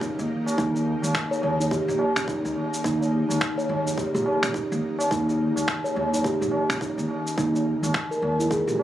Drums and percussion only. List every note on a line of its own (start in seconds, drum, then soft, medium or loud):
0.01 kick loud
0.01 cabasa medium
0.19 cabasa soft
0.29 tabla ge medium
0.46 tabla na medium
0.46 cabasa medium
0.58 kick loud
0.58 cabasa medium
0.74 tabla tin medium
0.74 cabasa soft
1.02 tabla na medium
1.02 cabasa medium
1.15 finger snap medium
1.15 kick loud
1.15 cabasa medium
1.31 tabla tin soft
1.31 cabasa soft
1.42 tabla na medium
1.58 tabla tin medium
1.58 tabla ge medium
1.58 cabasa medium
1.71 kick loud
1.71 cabasa medium
1.88 tabla ge medium
1.88 cabasa soft
1.99 tabla na medium
2.16 finger snap medium
2.16 cabasa medium
2.28 kick loud
2.28 cabasa medium
2.45 cabasa soft
2.56 tabla na medium
2.72 tabla tin soft
2.72 cabasa medium
2.84 kick loud
2.84 cabasa medium
3.00 tabla tin medium
3.00 cabasa soft
3.29 tabla na medium
3.29 cabasa medium
3.41 finger snap medium
3.41 kick loud
3.41 cabasa medium
3.59 cabasa soft
3.70 tabla na medium
3.85 tabla tin medium
3.85 tabla ge loud
3.85 cabasa medium
3.98 kick loud
3.98 cabasa medium
4.16 cabasa soft
4.26 tabla na medium
4.42 finger snap medium
4.42 tabla tin medium
4.42 cabasa medium
4.54 kick loud
4.54 cabasa medium
4.72 cabasa soft
4.82 tabla ge medium
4.99 tabla na medium
4.99 cabasa medium
5.11 kick loud
5.11 cabasa medium
5.28 tabla tin medium
5.28 cabasa soft
5.56 tabla na medium
5.56 cabasa medium
5.68 finger snap medium
5.68 kick loud
5.68 cabasa medium
5.84 tabla tin soft
5.84 cabasa soft
5.96 tabla na medium
6.12 tabla tin medium
6.12 tabla ge loud
6.12 cabasa medium
6.24 kick loud
6.24 cabasa medium
6.40 tabla ge medium
6.40 cabasa soft
6.51 tabla na medium
6.69 finger snap medium
6.69 tabla ge medium
6.69 cabasa medium
6.81 kick loud
6.81 cabasa medium
6.99 cabasa soft
7.08 tabla na medium
7.25 tabla tin soft
7.25 cabasa medium
7.38 kick loud
7.38 cabasa medium
7.55 tabla tin medium
7.55 cabasa soft
7.84 tabla na medium
7.84 cabasa medium
7.94 finger snap medium
7.94 kick loud
7.94 cabasa medium
8.11 tabla tin soft
8.11 cabasa soft
8.23 tabla na medium
8.40 tabla tin medium
8.40 tabla ge medium
8.40 cabasa medium
8.51 kick loud
8.51 cabasa medium
8.68 cabasa soft
8.79 tabla na medium